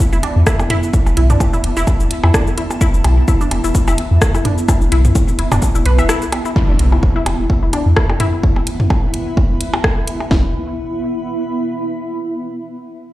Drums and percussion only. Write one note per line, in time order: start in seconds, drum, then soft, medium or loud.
0.00 kick loud
0.00 shaker medium
0.13 shaker soft
0.23 closed hi-hat medium
0.23 percussion blips soft
0.47 kick loud
0.47 cross-stick loud
0.47 shaker medium
0.60 percussion blips medium
0.60 shaker soft
0.70 closed hi-hat medium
0.70 mid tom medium
0.83 shaker soft
0.93 kick loud
0.93 shaker medium
1.06 percussion blips soft
1.06 shaker soft
1.17 closed hi-hat medium
1.30 closed hi-hat soft
1.30 mid tom medium
1.30 shaker soft
1.40 kick loud
1.40 percussion blips medium
1.40 shaker medium
1.53 shaker soft
1.64 closed hi-hat loud
1.77 shaker soft
1.87 kick loud
1.87 percussion blips soft
1.87 shaker medium
2.00 shaker soft
2.11 closed hi-hat medium
2.24 percussion blips medium
2.34 kick loud
2.34 cross-stick loud
2.34 shaker medium
2.47 shaker soft
2.58 closed hi-hat medium
2.71 percussion blips soft
2.71 shaker soft
2.81 kick loud
2.81 shaker medium
2.94 shaker soft
3.04 closed hi-hat medium
3.04 percussion blips medium
3.28 kick loud
3.28 shaker medium
3.41 shaker soft
3.51 closed hi-hat loud
3.51 percussion blips soft
3.64 shaker soft
3.75 kick loud
3.75 shaker medium
3.88 percussion blips medium
3.88 shaker soft
3.98 closed hi-hat loud
4.22 kick loud
4.22 cross-stick loud
4.22 shaker medium
4.34 percussion blips soft
4.34 shaker soft
4.45 closed hi-hat medium
4.45 mid tom medium
4.58 shaker soft
4.68 kick loud
4.68 percussion blips medium
4.68 shaker medium
4.81 shaker soft
4.92 closed hi-hat medium
5.05 closed hi-hat soft
5.05 mid tom medium
5.05 shaker soft
5.15 kick loud
5.15 percussion blips soft
5.15 shaker medium
5.28 shaker soft
5.39 closed hi-hat loud
5.52 mid tom medium
5.52 percussion blips medium
5.52 shaker soft
5.62 kick loud
5.62 shaker medium
5.75 shaker soft
5.86 closed hi-hat loud
5.98 percussion blips soft
5.98 shaker soft
6.09 cross-stick loud
6.09 shaker medium
6.22 closed hi-hat soft
6.22 shaker soft
6.32 closed hi-hat medium
6.32 percussion blips medium
6.45 shaker soft
6.56 kick loud
6.79 closed hi-hat loud
6.92 percussion blips soft
7.03 kick loud
7.26 closed hi-hat medium
7.26 percussion blips medium
7.50 kick loud
7.73 closed hi-hat loud
7.73 percussion blips soft
7.96 kick loud
7.96 cross-stick loud
8.10 percussion blips medium
8.20 closed hi-hat medium
8.20 mid tom medium
8.43 kick loud
8.56 percussion blips soft
8.67 closed hi-hat loud
8.80 mid tom medium
8.90 kick loud
8.90 percussion blips medium
9.14 closed hi-hat loud
9.37 kick loud
9.37 percussion blips soft
9.61 closed hi-hat medium
9.74 percussion blips medium
9.84 kick loud
9.84 cross-stick loud
10.07 closed hi-hat medium
10.20 percussion blips soft
10.31 kick loud
10.31 snare loud